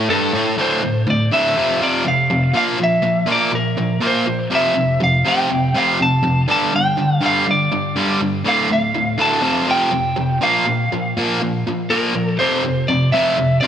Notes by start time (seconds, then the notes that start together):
0.10 G2 A4
0.35 A2
0.58 D2 A2 D3 C5
0.83 D2 A2
1.07 D2 A2 D5
1.31 D2 A2 D3 E5
1.56 F2 C3 F3
1.81 F2 C3 F3 D5
2.05 F2 C3 F5
2.30 F2 C3
2.54 A#2 F3 A#3 F5
2.79 A#2 F3
2.84 E5
3.02 A#2 F3
3.26 A#2 F3 A#3
3.32 D5
3.52 A#2 F3 A#4
3.78 A#2 F3
4.01 A#2 F3 A#3
4.07 C5
4.26 A#2 F3
4.51 F2 C3 F3
4.55 E5
4.75 F2 C3
5.00 F2 C3 F5
5.25 F2 C3 F3 G5
5.50 F2 C3
5.74 F2 C3 F3 F5
6.00 F2 C3 A5
6.23 F2 C3
6.48 G2 D3 G3 A5
6.74 G2 D3 G5
6.98 G2 D3
7.21 G2 D3 G3
7.26 F5
7.46 G2 D3
7.51 D5
7.72 G2 D3
7.96 G2 D3 G3
8.20 G2 D3
8.44 D2 A2 D3
8.49 F5
8.70 D2 A2 F5
8.94 D2 A2
9.18 D2 A2 D3 A5
9.41 F2 C3 F3
9.67 F2 C3 F3 G5
9.91 F2 C3
10.16 F2 C3
10.42 A#2 F3 A#3 F5
10.66 A#2 F3
10.92 A#2 F3
11.17 A#2 F3 A#3
11.42 A#2 F3
11.67 A#2 F3
11.90 A#2 F3 A#3 A#4
12.14 A#2 F3
12.39 F2 C3 F3 C5
12.64 F2 C3
12.88 F2 C3 D5
13.12 F2 C3 F3 E5
13.37 F2 C3
13.61 F2 C3 D5